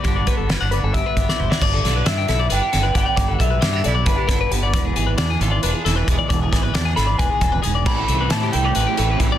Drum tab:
CC |--------------|x-------------|--------------|--------------|
HH |x-x-x-x-x-x---|--x-x-x-x-x-x-|x-x-x-x-x-x-x-|x-x-x-x-x-x-x-|
SD |----o------o-o|--o-o-o---o---|----o-----o---|----o-----o---|
T2 |------------o-|--------------|--------------|--------------|
BD |o-o-----o-o---|o-----------o-|o-o-----o-o---|o-----------o-|

CC |--------------|x-------------|
HH |x-x-x-x-x-x-x-|--x-x-x-x-x-x-|
SD |--o-o-o-------|----o---------|
T2 |--------------|--------------|
BD |o-o-----o-o---|o-----------o-|